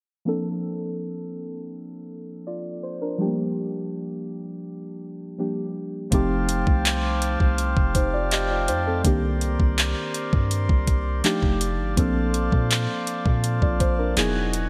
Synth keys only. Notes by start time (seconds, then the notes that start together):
0.25 F3 A#3 C4 D4 A4
2.47 F4 D5
2.83 C5
3.02 D4 A#4
3.18 F3 G3 A3 D4 G4
3.26 A#3
5.38 F3 G3 A#3 D4 G4
6.11 F3 A3 C4 D#4 G4
7.95 D#4 C5
8.14 F4 D5
8.32 G4 D#5
8.50 F4 D5
8.69 D#4 C5
8.87 C4 A4
9.04 D#3 A#3 C4 D4 G4
11.24 F3 A3 D4 D#4 G4
11.96 F3 A#3 C4 D4 A4
13.62 F4 D5
13.81 C5
13.99 D4 A#4
14.16 F#3 B3 D#4 E4 G#4